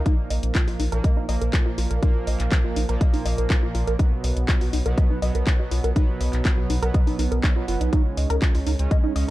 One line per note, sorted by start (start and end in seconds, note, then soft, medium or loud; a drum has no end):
0.06 0.89 A#2 medium
0.06 0.89 F3 medium
0.06 0.89 A#3 medium
0.06 0.15 D#4 loud
0.06 kick loud
0.06 closed hi-hat medium
0.30 0.39 A#1 medium
0.30 0.42 D#5 medium
0.30 open hi-hat loud
0.43 0.51 A#1 medium
0.43 closed hi-hat medium
0.55 0.66 F4 medium
0.55 kick loud
0.55 clap loud
0.55 closed hi-hat medium
0.68 0.75 A#1 medium
0.68 0.73 F4 medium
0.68 open hi-hat medium
0.80 0.88 A#1 medium
0.80 0.85 D#4 medium
0.80 open hi-hat loud
0.92 1.00 A#1 medium
0.92 1.26 A#2 medium
0.92 1.26 F3 medium
0.92 1.26 A#3 loud
0.92 0.98 A#4 loud
0.92 closed hi-hat medium
1.04 1.10 D#5 medium
1.04 kick loud
1.04 closed hi-hat medium
1.17 1.26 D#4 medium
1.29 1.37 A#1 medium
1.29 2.00 A#2 medium
1.29 2.00 F3 medium
1.29 2.00 A#3 medium
1.29 1.38 D#5 loud
1.29 open hi-hat loud
1.41 1.49 A#1 medium
1.41 1.50 A#4 medium
1.41 closed hi-hat medium
1.53 1.65 F4 medium
1.53 kick loud
1.53 clap loud
1.53 closed hi-hat medium
1.66 1.71 F4 medium
1.78 1.86 A#1 medium
1.78 1.87 F4 medium
1.78 open hi-hat loud
1.91 1.98 A#1 medium
1.91 1.96 A#4 loud
1.91 closed hi-hat medium
2.02 2.86 A#2 medium
2.02 2.86 F3 medium
2.02 2.86 A#3 loud
2.02 2.12 D#4 loud
2.02 kick loud
2.02 closed hi-hat medium
2.27 2.35 A#1 loud
2.27 2.39 D#5 medium
2.27 open hi-hat loud
2.40 2.47 A#1 medium
2.40 clap soft
2.40 closed hi-hat medium
2.52 2.63 F4 medium
2.52 kick loud
2.52 clap loud
2.52 closed hi-hat medium
2.64 2.72 A#1 medium
2.64 2.70 F4 medium
2.76 2.84 A#1 medium
2.76 2.82 D#4 medium
2.76 open hi-hat loud
2.89 2.97 A#1 medium
2.89 3.96 A#2 loud
2.89 3.96 F3 medium
2.89 3.96 A#3 loud
2.89 2.94 A#4 loud
2.89 closed hi-hat medium
3.01 3.07 D#5 loud
3.01 kick loud
3.01 closed hi-hat medium
3.14 3.22 D#4 medium
3.14 open hi-hat medium
3.25 3.34 A#1 loud
3.25 3.35 D#5 loud
3.25 open hi-hat loud
3.38 3.46 A#1 medium
3.38 3.47 A#4 medium
3.38 closed hi-hat medium
3.50 3.62 F4 medium
3.50 kick loud
3.50 clap loud
3.50 closed hi-hat medium
3.63 3.68 F4 medium
3.75 3.83 A#1 medium
3.75 3.84 F4 medium
3.75 open hi-hat loud
3.87 3.95 A#1 medium
3.87 3.93 A#4 loud
3.87 closed hi-hat medium
3.99 4.83 B2 medium
3.99 4.83 F#3 medium
3.99 4.83 B3 medium
3.99 4.09 D#4 loud
3.99 kick loud
3.99 closed hi-hat medium
4.24 4.32 B1 loud
4.24 4.36 D#5 medium
4.24 open hi-hat loud
4.37 4.44 B1 medium
4.37 closed hi-hat medium
4.48 4.61 F4 medium
4.48 kick loud
4.48 clap loud
4.48 closed hi-hat medium
4.61 4.69 B1 medium
4.61 4.66 F#4 medium
4.61 open hi-hat medium
4.73 4.81 B1 medium
4.73 4.79 D#4 medium
4.73 open hi-hat loud
4.86 4.93 B1 medium
4.86 5.19 B2 medium
4.86 5.19 F#3 medium
4.86 5.19 B3 loud
4.86 4.91 A#4 loud
4.86 closed hi-hat medium
4.98 5.03 D#5 loud
4.98 kick loud
4.98 closed hi-hat medium
5.10 5.19 D#4 medium
5.22 5.30 B1 loud
5.22 5.93 B2 medium
5.22 5.93 F#3 medium
5.22 5.93 B3 medium
5.22 5.32 D#5 loud
5.22 open hi-hat loud
5.35 5.43 B1 medium
5.35 5.44 A#4 medium
5.35 closed hi-hat medium
5.47 5.59 F4 medium
5.47 kick loud
5.47 clap loud
5.47 closed hi-hat medium
5.60 5.65 F#4 medium
5.71 5.80 B1 loud
5.71 5.81 F4 medium
5.71 open hi-hat loud
5.84 5.92 B1 medium
5.84 5.89 A#4 loud
5.84 closed hi-hat medium
5.96 6.79 B2 medium
5.96 6.79 F#3 medium
5.96 6.79 B3 loud
5.96 6.05 D#4 loud
5.96 kick loud
5.96 closed hi-hat medium
6.21 6.29 B1 loud
6.21 6.33 D#5 medium
6.21 open hi-hat loud
6.33 6.41 B1 medium
6.33 clap soft
6.33 closed hi-hat medium
6.45 6.57 F4 medium
6.45 kick loud
6.45 clap loud
6.45 closed hi-hat medium
6.58 6.65 B1 medium
6.58 6.63 F#4 medium
6.70 6.78 B1 medium
6.70 6.75 D#4 medium
6.70 open hi-hat loud
6.82 6.90 B1 medium
6.82 7.54 B2 medium
6.82 7.54 F#3 medium
6.82 7.54 B3 loud
6.82 6.88 A#4 loud
6.82 closed hi-hat medium
6.94 7.00 D#5 loud
6.94 kick loud
6.94 closed hi-hat medium
7.07 7.16 D#4 loud
7.07 open hi-hat medium
7.19 7.27 B1 medium
7.19 7.25 D#4 medium
7.19 open hi-hat loud
7.32 7.39 B1 medium
7.32 7.40 A#4 medium
7.32 closed hi-hat medium
7.44 7.53 D#4 medium
7.44 kick loud
7.44 clap loud
7.44 closed hi-hat medium
7.56 7.65 B2 medium
7.56 7.65 F#3 medium
7.56 7.65 B3 loud
7.56 7.65 F4 medium
7.68 7.76 F#1 loud
7.68 7.90 B2 medium
7.68 7.90 F#3 medium
7.68 7.90 B3 medium
7.68 7.80 F4 medium
7.68 open hi-hat loud
7.81 7.88 B1 medium
7.81 7.92 D#4 medium
7.81 closed hi-hat medium
7.93 8.76 C#3 medium
7.93 8.76 G#3 medium
7.93 8.76 C#4 medium
7.93 8.02 D#4 loud
7.93 kick loud
7.93 closed hi-hat medium
8.17 8.25 C#2 medium
8.17 8.29 D#5 medium
8.17 open hi-hat loud
8.30 8.38 C#2 medium
8.30 8.35 A#4 loud
8.30 closed hi-hat medium
8.42 8.53 F4 medium
8.42 kick loud
8.42 clap loud
8.42 closed hi-hat medium
8.55 8.62 C#2 medium
8.55 8.60 F4 medium
8.55 open hi-hat medium
8.66 8.75 C#2 medium
8.66 8.72 D#4 medium
8.66 open hi-hat loud
8.79 8.87 C#2 medium
8.79 9.13 C#3 medium
8.79 9.13 G#3 medium
8.79 9.13 C#4 medium
8.79 closed hi-hat medium
8.91 8.97 D#5 loud
8.91 kick loud
8.91 closed hi-hat medium
9.04 9.13 D#4 loud
9.16 9.24 C#2 loud
9.16 9.30 C#3 medium
9.16 9.30 G#3 medium
9.16 9.30 C#4 medium
9.16 9.25 D#5 loud
9.16 open hi-hat loud